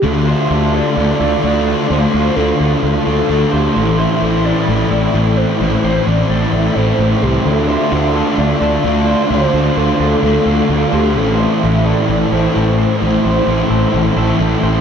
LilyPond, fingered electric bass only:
\new Staff \with { instrumentName = "Fingered electric bass" } { \clef bass \time 4/4 \key d \minor \tempo 4 = 130 d,4 d,4 d,8 d,8 d,4 | d,8 d,8 d,8 d,8 d,8 d,8 d,8 d,8 | a,,4 a,,4 a,,8 a,,8 a,,4 | a,,8 a,,8 a,,8 a,,8 a,,8 a,,8 a,,8 c,8 |
d,4 d,4 d,8 d,8 d,4 | d,8 d,8 d,8 d,8 d,8 d,8 d,8 d,8 | a,,4 a,,4 a,,8 a,,8 a,,4 | a,,8 a,,8 a,,8 a,,8 a,,8 a,,8 a,,8 a,,8 | }